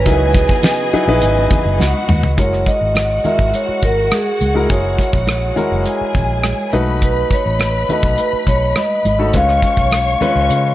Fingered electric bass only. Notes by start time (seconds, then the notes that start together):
0.06 C#2
0.93 muted fingered electric bass stroke
1.08 A#1
1.22 G#1
1.65 F#1
1.79 C#2
2.08 D#2
2.23 C#2
2.38 F#1
2.81 G#1
3.25 muted fingered electric bass stroke
3.39 G#1
3.69 muted fingered electric bass stroke
3.83 G#1
4.41 C#2
4.70 F#1
5.13 A#1
5.58 muted fingered electric bass stroke
5.72 F#1
6.01 muted fingered electric bass stroke
6.15 A#1
6.73 B1
7.46 A1
7.89 muted fingered electric bass stroke
8.03 B1
8.33 muted fingered electric bass stroke
8.47 B1
9.05 G#1
9.34 C#2
9.77 B1
10.21 muted fingered electric bass stroke
10.35 C#2
10.50 C#3